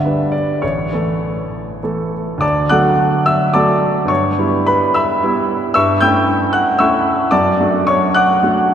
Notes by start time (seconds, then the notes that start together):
Already playing: G1 E5
0.05 G3 D4 B4
0.32 D5
0.62 A1 C#5
0.93 E3 A3 A4
1.83 E3 A3 A4
2.38 D2 D5 A5 D6
2.69 F#3 A3 A4 F#5 D6 F#6
3.26 E5 E6
3.54 F#3 A3 A4 D5 A5 D6
4.05 G2 C#6
4.10 C#5
4.38 G3 B3 E4
4.67 B4 B5
4.94 E5 B5 E6
5.23 G3 B3 E4
5.74 G2 E5 C#6 E6
6.01 A3 C#4 E4 G5 E6 G6
6.53 F#5 F#6
6.79 A3 C#4 E4 E5 C#6 E6
7.31 F#2 D5 A5 D6
7.60 A3 D4 F#4
7.87 C#5 C#6
8.15 F#5 D6 F#6
8.43 A3 D4 F#4